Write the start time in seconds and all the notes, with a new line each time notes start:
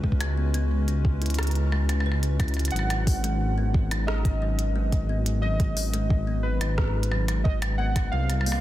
Already playing: C#2 G#3 C#4 F#4 B4
0.04 G#3, kick
0.12 kick
0.21 closed hi-hat, percussion blips
0.37 B3
0.54 B3, closed hi-hat
0.88 C#4, closed hi-hat
1.05 kick
1.22 E4, closed hi-hat
1.26 closed hi-hat
1.30 closed hi-hat
1.34 closed hi-hat
1.39 cross-stick, closed hi-hat, percussion blips
1.43 closed hi-hat
1.47 closed hi-hat
1.51 closed hi-hat
1.55 closed hi-hat
1.72 G#3, percussion blips
1.89 closed hi-hat, percussion blips
2.00 percussion blips
2.06 B4
2.12 percussion blips
2.23 closed hi-hat
2.40 E4, kick, closed hi-hat, percussion blips
2.48 closed hi-hat
2.54 closed hi-hat, percussion blips
2.59 closed hi-hat
2.65 closed hi-hat, percussion blips
2.71 G#1 F#3 F#5, closed hi-hat
2.76 closed hi-hat, percussion blips
2.90 closed hi-hat, percussion blips
3.07 G#3, kick, open hi-hat
3.24 G#3, closed hi-hat
3.58 B3
3.74 kick
3.91 D#4, closed hi-hat, percussion blips
4.07 D#5, cross-stick
4.25 kick, closed hi-hat
4.42 F#3
4.59 closed hi-hat
4.76 G#3
4.92 kick, closed hi-hat
5.09 B3
5.26 closed hi-hat
5.42 F#3 D#5
5.60 kick, closed hi-hat
5.77 G#3, open hi-hat
5.94 G#3, closed hi-hat
6.10 kick
6.27 B3
6.43 B4
6.61 D#4, closed hi-hat, percussion blips
6.78 kick, cross-stick
7.03 closed hi-hat
7.12 F#3, percussion blips
7.28 closed hi-hat, percussion blips
7.44 G#3 D#5, kick
7.62 closed hi-hat, percussion blips
7.78 B3 F#5
7.96 kick, closed hi-hat, percussion blips
8.12 C2 G3 F5
8.30 closed hi-hat, percussion blips
8.41 percussion blips
8.46 A#3 F4, open hi-hat
8.52 percussion blips